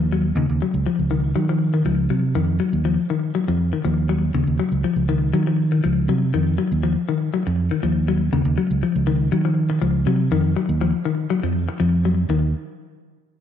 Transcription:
Already playing: D#2
0.12 F#3
0.35 D#2 C#3
0.49 D#2
0.62 F#3
0.74 C#2
0.86 F3, muted fingered electric bass stroke
0.99 C#2
1.11 D#3
1.35 D#3 F#3
1.49 F3
1.74 D#3
1.85 C#2 F3
2.10 C3 F#3
2.35 F2 D#3
2.60 F#3
2.73 D#2
2.85 F3
3.10 D#3
3.35 F#3
3.48 F2 F3
3.73 D#3
3.85 D#2 F3
4.09 F#3
4.34 D#2 C#3
4.47 D#2
4.59 F#3
4.72 C#2
4.83 F3, muted fingered electric bass stroke
4.96 C#2
5.09 D#3
5.33 D#3 F#3
5.47 F3
5.72 D#3
5.84 C#2 F3
6.08 C3 F#3
6.34 F2 D#3
6.58 F#3
6.72 D#2
6.83 F3
7.09 D#3
7.34 F#3
7.47 F2, muted clean electric guitar stroke
7.71 D#3
7.83 D#2 F3
8.08 F#3
8.32 D#2 C#3
8.45 D#2
8.58 F#3
8.71 C#2
8.82 F3, muted fingered electric bass stroke
8.95 C#2
9.07 D#3
9.32 D#3 F#3
9.45 F3
9.70 muted clean electric guitar stroke
9.82 C#2 F3
10.06 C3 F#3
10.31 F2 D#3
10.56 F#3
10.69 D#2
10.81 F3
11.05 D#3
11.30 F#3
11.43 F2 F3
11.69 muted clean electric guitar stroke
11.80 F2 F3
12.05 F#3
12.29 D#2 D#3

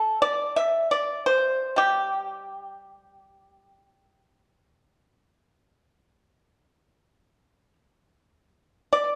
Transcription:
Already playing: G3 A4
0.22 D5
0.56 E5
0.91 D5
1.26 C5
1.76 G3 G4
8.93 D5

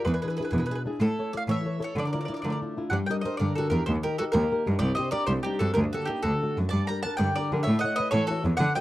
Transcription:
0.05 E2 E3 G#4 B4
0.14 G#4 B4
0.22 D4 E4 G#4 B4
0.28 G#4 B4
0.37 D4 E4 G#4 B4
0.41 G#4 B4
0.51 E2 B2 G#4 B4
0.58 G#4 B4
0.66 G#4 B4
0.70 D4 E4 G#4
0.75 B4
0.86 D4 E4 G#4
1.00 A2 A3 E4 A4
1.19 E4 A4 C#5
1.33 E4 A4 C#5 D5
1.37 F5
1.48 A2 E3 C#5 E5
1.65 E4 A4 C#5
1.80 E4 A4 C#5
1.84 C#5
1.96 D3 A4 D5
2.05 A#4 D5
2.13 D4 E4 F4 A#4 D5
2.21 A#4 D5
2.25 D4 A#4 D5
2.29 E4 F4
2.34 A#4 D5
2.42 D3 A3 A#4 D5
2.50 A#4 D5
2.62 D4 E4 F4
2.77 D4 E4 F4
2.90 G2 G3 D5 F#5
3.06 D4 G4 G5
3.11 A#4 D#5
3.21 D4 G4 C5 D#5
3.26 A#4
3.37 G2 D3 A#4 D5
3.55 D4 F#4 G4 A4 A#4
3.70 E2 D4 G4 A#4
3.86 D#2 D#3 G4 C5
4.03 D#4 G4 A#4
4.18 D#4 F#4 G4 A4 A#4
4.32 D#2 A#3 G4 A#4
4.52 D#4 G4 A#4
4.66 G2 D#4 G4 A#4
4.79 C2 C3 G4 D5
4.95 C4 D4 G4 C5 D#5
5.11 C4 D4 G4 A#4 D5
5.27 C2 G3 G4 C5
5.43 C4 D4 D#4 G4
5.59 G2 C4 D4 F#4 G4 A4
5.74 D2 D3 G4 A#4
5.93 A#3 D4 F#4 G4 A4
6.05 A#3 D4 D#4 G4
6.10 G4
6.23 D2 D3 F#4 A4
6.43 A3 D4 F#4
6.57 F#2 A3 D4 F#4
6.69 G2 D5 A5
6.73 G3
6.87 D4 G4 A#4 G5 A#5
7.03 D4 G4 A#4 F#5 A5
7.17 G2 D3 D5 G5
7.36 D4 G4 A#4 D5
7.52 D3 D4 G4 A#4
7.63 C#5 E5
7.67 A2 A3
7.79 D#5 F#5
7.84 E4 A4 C#5
7.96 E4 A4 B4 D#5
8.00 C#5
8.11 A2 E3 A4 C#5
8.27 E4 F#4 A4
8.31 C#5
8.44 E2 E4 A4 C#5
8.57 D3 D5 F#5
8.75 D4 F#4 A4 D#5 G5

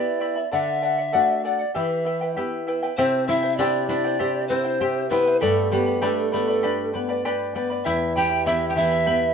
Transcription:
Already playing: B3 E4 G4 B4 D5 E5 G5 B5
0.20 E4 E5 G5 B5
0.36 E4 E5 B5
0.52 D3 A4 D5 E5 F#5
0.82 A4 D5 F#5
0.98 D5 F#5
1.12 A3 D4 F#4 A4 D5 F#5
1.44 A4 D5 F#5
1.59 D5 F#5
1.75 E3 E4 G4 B4 E5 G5
2.05 E4 B4 E5 G5
2.21 E4 B4 G5
2.36 B3 E4 G4 B4 E5 G5
2.67 E4 B4 E5 G5
2.83 E4 B4 G5
2.97 C3 C4 E4 G4 C5 E5 G5
3.28 E4 C5 E5 G5
3.43 E4 C5 G5
3.58 D4 E4 G4 C5 D5 E5 G5
3.88 D4 E4 C5 D5 E5 G5
4.05 E4 C5 G5
4.19 E4 G4 C5 E5 G5
4.48 C4 E4 C5 E5 G5
4.64 E4 C5 G5
4.81 E4 G4 C5 E5 G5
5.09 B3 E4 B4 C5 E5 G5
5.26 E4 C5 G5
5.40 G2 A3 G4 A4 B4 D5 G5 B5
5.72 G3 B3 G4 B4 D5 G5 B5
5.86 B4 D5 B5
6.01 A3 D4 G4 A4 B4 D5 G5 B5
6.32 A3 B3 A4 B4 D5 G5 B5
6.48 B4 D5 B5
6.63 D4 G4 B4 D5 G5 B5
6.93 B3 B4 D5 G5 B5
7.09 B4 D5 B5
7.25 D4 G4 B4 D5 G5 B5
7.55 B3 B4 D5 G5 B5
7.70 B4 D5 B5
7.85 E2 E4 G4 E5 G5 B5
8.16 E3 E4 G4 E5 G5 B5
8.30 E4 E5 B5
8.46 B3 E4 G4 E5 G5 B5
8.68 G4 G5
8.75 E3 E4 E5 G5 B5
8.91 E4 E5 B5
9.06 B3 E4 G4 E5 G5 B5

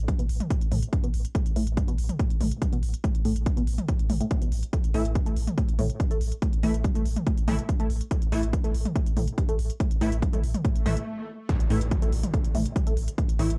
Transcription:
0.08 G2, kick, closed hi-hat
0.19 A1 B2, closed hi-hat
0.29 A1, open hi-hat
0.40 closed hi-hat, mid tom
0.51 A2, kick, closed hi-hat
0.61 A1, closed hi-hat
0.72 A1 A2, mid tom, open hi-hat
0.83 closed hi-hat
0.93 G2, kick, closed hi-hat
1.04 A1 B2, closed hi-hat
1.14 A1, open hi-hat
1.25 closed hi-hat
1.35 A2, kick, closed hi-hat
1.46 A1, closed hi-hat
1.56 A1 A2, open hi-hat
1.67 A1, closed hi-hat
1.77 G2, kick, closed hi-hat
1.88 A1 B2, closed hi-hat
1.98 A1, open hi-hat
2.09 closed hi-hat, mid tom
2.19 A2, kick, closed hi-hat
2.30 A1, closed hi-hat
2.41 A1 A2, mid tom, open hi-hat
2.52 closed hi-hat
2.62 G2, kick, closed hi-hat
2.73 A1 B2, closed hi-hat
2.83 A1, open hi-hat
2.94 closed hi-hat
3.04 A2, kick, closed hi-hat
3.15 A1, closed hi-hat
3.25 A1 A2, open hi-hat
3.36 A1, closed hi-hat
3.46 G2, kick, closed hi-hat
3.57 A1 B2, closed hi-hat
3.67 A1, open hi-hat
3.78 closed hi-hat, mid tom
3.88 A2, kick, closed hi-hat
3.99 A1, closed hi-hat
4.10 A1 A2, mid tom, open hi-hat
4.21 A2, closed hi-hat
4.31 A2, kick, closed hi-hat
4.42 A1 B2, closed hi-hat
4.52 A1, open hi-hat
4.63 closed hi-hat
4.73 A2, kick, closed hi-hat
4.84 A1, closed hi-hat
4.94 A1 A2 E3 A3 E4, open hi-hat
5.05 A1, closed hi-hat
5.15 G2, kick, closed hi-hat
5.26 A1 A3, closed hi-hat
5.36 A1, open hi-hat
5.47 closed hi-hat, mid tom
5.58 A2, kick, closed hi-hat
5.68 A1, closed hi-hat
5.79 A1 A2, mid tom, open hi-hat
5.90 closed hi-hat
6.00 G2, kick, closed hi-hat
6.11 A1 A3, closed hi-hat
6.21 A1, open hi-hat
6.32 closed hi-hat
6.42 A2, kick, closed hi-hat
6.53 A1, closed hi-hat
6.63 A1 A2 E3 A3 E4, open hi-hat
6.74 A1, closed hi-hat
6.84 G2, kick, closed hi-hat
6.95 A1 A3, closed hi-hat
7.05 A1, open hi-hat
7.16 closed hi-hat, mid tom
7.27 A2, kick, closed hi-hat
7.37 A1, closed hi-hat
7.48 A1 A2 E3 A3 E4, mid tom, open hi-hat
7.59 closed hi-hat
7.69 G2, kick, closed hi-hat
7.80 A1 A3, closed hi-hat
7.90 A1, open hi-hat
8.01 closed hi-hat
8.11 A2, kick, closed hi-hat
8.22 A1, closed hi-hat
8.32 A1 A2 E3 A3 E4, open hi-hat
8.43 A1, closed hi-hat
8.53 G2, kick, closed hi-hat
8.64 A1 A3, closed hi-hat
8.74 A1, open hi-hat
8.85 closed hi-hat, mid tom
8.96 A2, kick, closed hi-hat
9.06 A1, closed hi-hat
9.17 A1 A2, mid tom, open hi-hat
9.28 closed hi-hat
9.38 G2, kick, closed hi-hat
9.49 A1 A3, closed hi-hat
9.59 A1, open hi-hat
9.70 closed hi-hat
9.80 A2, kick, closed hi-hat
9.91 A1, closed hi-hat
10.01 A1 A2 E3 A3 E4, open hi-hat
10.12 A1, closed hi-hat
10.22 G2, kick, closed hi-hat
10.33 A1 A3, closed hi-hat, mid tom
10.43 A1, open hi-hat
10.54 closed hi-hat, mid tom
10.65 A2, kick, closed hi-hat, swell
10.76 A1, closed hi-hat
10.86 A1 A2 E3 A3 E4, mid tom, open hi-hat
10.97 closed hi-hat
11.49 A2, kick, closed hi-hat, impact
11.60 A1, closed hi-hat
11.70 A1 A2 E3 A3 E4, open hi-hat
11.81 A1, closed hi-hat
11.91 G2, kick, closed hi-hat
12.02 A1 A3, closed hi-hat
12.12 A1, open hi-hat
12.23 closed hi-hat, mid tom
12.34 A2, kick, closed hi-hat
12.45 A1, closed hi-hat
12.55 A1 A2, mid tom, open hi-hat
12.66 closed hi-hat
12.76 G2, kick, closed hi-hat
12.87 A1 A3, closed hi-hat
12.97 A1, open hi-hat
13.08 closed hi-hat
13.18 A2, kick, closed hi-hat
13.29 A1, closed hi-hat
13.39 A1 A2 E3 A3 E4, open hi-hat
13.50 A1, closed hi-hat

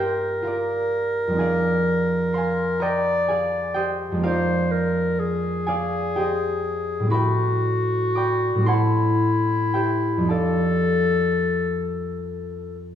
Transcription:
Already playing: G2 G3 A#3 C4 D4 F4 A#4 D5 F5 G5 A#5 D6
0.00 G4 C5 E5
0.42 F4 A#4 F5
0.47 D5
1.27 F2 G3
1.33 C4 D#4
1.39 G#4 D5 F5 G#5
2.33 C5 F5 C6
2.38 G#5
2.80 A#4 D5 D#5 G5 A#5
3.28 G#4 D5 F5 G#5
3.74 G4 C5 D#5 G5
4.12 F2 G#3
4.17 A#3 C4
4.22 D#4 F4 A#4 C5 D5 F5
4.71 A#4
5.19 G#4
5.67 G#4 D5 F5 G#5
6.16 G4 C5 D#5 G5
7.00 A2 G3
7.05 C4 D4
7.10 E4 F#4 B4 E5 B5
7.14 G5
8.15 D5 G5 B5 D6
8.55 A2 G3
8.60 C4 D4
8.65 E4 C5 F#5 A5 C6
9.74 G4 C5 E5 G5
10.17 F2 G3
10.23 C4 D#4
10.28 F4 A4 D5 F5 A5

